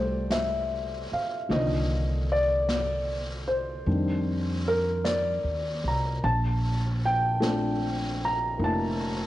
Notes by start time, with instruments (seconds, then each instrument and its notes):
Already playing: upright bass C2, grand piano E3 G3 A3 C4 C5 D5
0.31 grand piano E5, brush sweep, snare, hi-hat pedal
1.12 grand piano F5, muted upright bass stroke
1.48 upright bass C2, grand piano D3 D#3 F3 A#3 D#5, brush sweep, snare
2.32 grand piano D5
2.69 brush sweep, snare, hi-hat pedal
3.48 grand piano C5
3.86 upright bass F2, grand piano D#3 G3 C4 D4, brush sweep
4.68 grand piano A#4
5.05 grand piano D5, brush sweep, snare, hi-hat pedal
5.44 upright bass D#2
5.84 upright bass C2, grand piano A#5
6.23 upright bass A#1, grand piano A5, brush sweep
7.06 grand piano G5
7.40 grand piano F3 A3 C4 D4, brush sweep, snare, hi-hat pedal
8.25 grand piano A#5
8.58 upright bass F1, grand piano A#3 D4 E4, brush sweep
8.64 grand piano A5